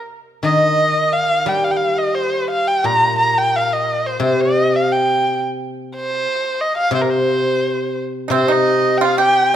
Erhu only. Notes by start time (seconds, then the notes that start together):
0.44 D#5
1.12 F5
1.48 G5
1.64 F5
1.71 G5
1.77 F5
1.98 D#5
2.15 C5
2.50 F5
2.68 G5
2.85 A#5
3.19 A#5
3.38 G5
3.56 F5
3.73 D#5
4.06 C5
4.23 C5
4.41 D#5
4.76 F5
4.92 G5
5.96 C5
6.61 D#5
6.77 F5
6.95 C5
7.01 A#4
7.10 C5
8.34 C5
8.52 D#5
8.98 G5
9.05 F5
9.20 G5